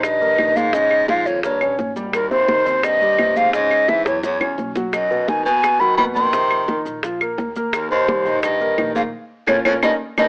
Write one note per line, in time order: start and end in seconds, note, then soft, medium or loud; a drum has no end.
0.00 0.35 A#1 medium
0.00 0.57 G2 medium
0.00 0.15 D#4 medium
0.00 0.15 D#5 medium
0.00 0.58 D#5 medium
0.00 high bongo medium
0.00 claves medium
0.04 high conga soft
0.04 maracas medium
0.21 0.35 A#3 medium
0.21 0.36 A#4 medium
0.21 high bongo soft
0.21 high conga soft
0.21 maracas soft
0.38 1.20 A#1 medium
0.38 0.67 D#3 medium
0.38 0.68 D#4 medium
0.38 high bongo soft
0.38 low bongo medium
0.38 high conga medium
0.38 claves medium
0.38 maracas soft
0.56 0.74 G#2 medium
0.56 0.75 F5 medium
0.56 high conga medium
0.56 maracas medium
0.73 1.08 G#2 medium
0.73 1.02 C#3 medium
0.73 1.02 C#4 medium
0.73 1.09 D#5 medium
0.73 high bongo medium
0.73 high conga soft
0.73 maracas medium
0.91 high bongo soft
0.91 high conga soft
0.91 claves medium
0.91 maracas soft
1.08 1.29 G#2 medium
1.08 1.38 F3 medium
1.08 1.38 F4 medium
1.08 1.28 F5 medium
1.08 high bongo medium
1.08 high conga medium
1.08 maracas soft
1.26 1.58 D#2 medium
1.26 1.43 F2 medium
1.26 1.43 C#5 medium
1.26 high bongo soft
1.26 high conga soft
1.26 maracas medium
1.43 1.76 G2 medium
1.43 1.58 A#3 medium
1.43 1.58 A#4 medium
1.43 1.76 C#5 medium
1.43 high bongo medium
1.43 high conga soft
1.43 maracas medium
1.61 1.77 A#1 medium
1.61 1.90 C#4 medium
1.61 1.90 C#5 medium
1.61 high bongo soft
1.61 high conga soft
1.61 claves medium
1.61 maracas soft
1.79 2.60 G#1 medium
1.79 high bongo soft
1.79 low bongo medium
1.79 high conga medium
1.79 maracas soft
1.96 2.25 G3 medium
1.96 2.25 G4 medium
1.96 high conga medium
1.96 maracas medium
2.13 2.30 D#2 medium
2.13 2.30 A#4 medium
2.13 high bongo medium
2.13 high conga soft
2.13 claves medium
2.13 maracas medium
2.31 2.85 D#2 medium
2.31 2.45 C3 medium
2.31 2.45 C4 medium
2.31 2.86 C5 medium
2.31 high bongo soft
2.31 high conga soft
2.31 maracas soft
2.48 2.63 D#3 medium
2.48 2.63 D#4 medium
2.48 high bongo medium
2.48 high conga medium
2.48 maracas soft
2.65 3.15 D#2 medium
2.65 2.95 C4 medium
2.65 2.95 C5 medium
2.65 high bongo soft
2.65 high conga soft
2.65 maracas medium
2.83 3.37 G2 medium
2.83 3.38 D#5 loud
2.83 high bongo medium
2.83 high conga soft
2.83 claves medium
2.83 maracas medium
3.01 3.16 G3 medium
3.01 3.16 G4 medium
3.01 high bongo soft
3.01 high conga soft
3.01 maracas soft
3.18 4.00 C#2 medium
3.18 3.47 C3 medium
3.18 3.47 C4 medium
3.18 high bongo soft
3.18 low bongo medium
3.18 high conga medium
3.18 claves medium
3.18 maracas soft
3.36 3.54 G#2 medium
3.36 3.53 F5 medium
3.36 high conga medium
3.36 maracas medium
3.53 3.89 G#2 medium
3.53 3.82 C#3 medium
3.53 3.82 C#4 medium
3.53 3.90 D#5 medium
3.53 high bongo medium
3.53 high conga soft
3.53 maracas medium
3.71 high bongo soft
3.71 high conga soft
3.71 claves medium
3.71 maracas soft
3.88 4.06 G#2 medium
3.88 4.17 E3 medium
3.88 4.17 E4 medium
3.88 4.06 E5 medium
3.88 high bongo medium
3.88 high conga medium
3.88 maracas soft
4.05 4.23 E2 medium
4.05 4.38 F#2 medium
4.05 4.22 C#5 medium
4.05 high bongo medium
4.05 high conga soft
4.05 maracas medium
4.23 4.56 E2 medium
4.23 4.38 F#3 medium
4.23 4.38 F#4 medium
4.23 4.56 C#5 medium
4.23 low bongo medium
4.23 high conga soft
4.23 maracas medium
4.40 4.57 C2 medium
4.40 4.70 C#4 medium
4.40 4.70 C#5 medium
4.40 low bongo medium
4.40 high conga soft
4.40 claves medium
4.40 maracas soft
4.58 5.40 B1 medium
4.58 low bongo medium
4.58 high conga medium
4.58 maracas soft
4.76 5.05 F#3 medium
4.76 5.05 F#4 medium
4.76 low bongo medium
4.76 high conga medium
4.76 maracas medium
4.93 5.30 F#2 medium
4.93 5.30 D#5 medium
4.93 high bongo medium
4.93 high conga soft
4.93 claves medium
4.93 maracas medium
5.10 5.25 B2 medium
5.10 5.25 B3 medium
5.10 high bongo soft
5.10 high conga soft
5.10 maracas soft
5.28 5.45 B2 medium
5.28 5.43 D#3 medium
5.28 5.43 D#4 medium
5.28 5.45 G#5 medium
5.28 high bongo soft
5.28 high conga medium
5.28 maracas soft
5.45 5.94 D#2 medium
5.45 5.81 B2 medium
5.45 5.75 B3 medium
5.45 5.75 B4 medium
5.45 5.81 G#5 medium
5.45 high bongo soft
5.45 high conga soft
5.45 maracas medium
5.63 high bongo medium
5.63 high conga soft
5.63 claves medium
5.63 maracas medium
5.80 5.97 D#3 medium
5.80 5.95 F#3 medium
5.80 5.95 F#4 medium
5.80 5.96 B5 medium
5.80 high bongo soft
5.80 high conga soft
5.80 maracas soft
5.97 6.80 F2 medium
5.97 6.27 B2 medium
5.97 6.05 D#3 medium
5.97 6.27 B3 medium
5.97 6.03 B5 medium
5.97 high bongo soft
5.97 low bongo medium
5.97 high conga medium
5.97 claves medium
5.97 maracas soft
6.15 6.81 D#3 medium
6.15 6.81 C6 medium
6.15 high conga medium
6.15 maracas medium
6.33 6.62 C3 medium
6.33 6.62 C4 medium
6.33 high bongo medium
6.33 high conga soft
6.33 maracas medium
6.51 high bongo soft
6.51 high conga soft
6.51 claves medium
6.51 maracas soft
6.68 6.97 D#3 medium
6.68 6.97 D#4 medium
6.68 high bongo medium
6.68 high conga medium
6.68 maracas soft
6.85 7.34 A#1 medium
6.85 high bongo soft
6.85 high conga soft
6.85 maracas medium
7.03 7.18 F3 medium
7.03 7.18 F4 medium
7.03 high bongo medium
7.03 high conga soft
7.03 maracas medium
7.21 7.50 A#3 medium
7.21 7.50 A#4 medium
7.21 high bongo soft
7.21 high conga soft
7.21 claves medium
7.21 maracas soft
7.38 8.20 D#2 medium
7.38 high bongo soft
7.38 low bongo medium
7.38 high conga medium
7.38 maracas soft
7.56 7.85 A#3 medium
7.56 7.85 A#4 medium
7.56 high conga medium
7.56 maracas medium
7.73 7.90 D#2 medium
7.73 7.90 A#4 medium
7.73 high bongo medium
7.73 high conga soft
7.73 claves medium
7.73 maracas medium
7.90 8.40 D#2 medium
7.90 8.05 D#3 medium
7.90 8.05 D#4 medium
7.90 8.39 C5 medium
7.90 high bongo soft
7.90 high conga soft
7.90 maracas soft
8.08 8.23 G3 medium
8.08 8.23 G4 medium
8.08 high bongo medium
8.08 high conga medium
8.08 maracas soft
8.25 8.74 A#1 medium
8.25 8.54 D#4 medium
8.25 8.55 D#5 medium
8.25 high bongo soft
8.25 high conga soft
8.25 maracas medium
8.43 8.92 G2 medium
8.43 8.92 D#5 medium
8.43 high bongo medium
8.43 high conga soft
8.43 claves medium
8.43 maracas medium
8.61 8.75 A#3 medium
8.61 8.75 A#4 medium
8.61 high bongo soft
8.61 high conga soft
8.61 maracas soft
8.77 9.10 A#1 medium
8.77 9.06 D#3 medium
8.77 9.07 D#4 medium
8.77 high bongo soft
8.77 low bongo medium
8.77 high conga medium
8.77 claves medium
8.77 maracas soft
8.95 9.03 G#2 medium
8.95 9.02 F5 medium
8.95 high conga medium
8.95 maracas medium
9.47 9.61 A#1 medium
9.47 9.56 F2 medium
9.47 9.59 A#3 medium
9.47 9.59 C#4 medium
9.47 9.59 F4 medium
9.47 9.59 C#5 medium
9.47 low bongo medium
9.47 high conga medium
9.47 claves medium
9.47 maracas medium
9.65 9.78 A#1 medium
9.65 9.74 F2 medium
9.65 9.77 A#3 medium
9.65 9.77 C#4 medium
9.65 9.77 F4 medium
9.65 9.77 C#5 medium
9.65 low bongo loud
9.65 high conga medium
9.65 claves loud
9.65 maracas medium
9.83 9.96 D#2 medium
9.83 9.91 G2 medium
9.83 9.94 A#3 medium
9.83 9.94 C#4 medium
9.83 9.94 D#4 medium
9.83 9.94 D#5 medium
9.83 low bongo loud
9.83 high conga medium
9.83 claves loud
9.83 maracas medium
10.17 10.28 D#2 medium
10.17 10.26 G2 medium
10.17 10.28 A#3 medium
10.17 10.28 C#4 medium
10.17 10.28 D#4 medium
10.17 10.28 D#5 medium
10.17 low bongo medium
10.17 high conga medium
10.17 claves medium
10.17 maracas medium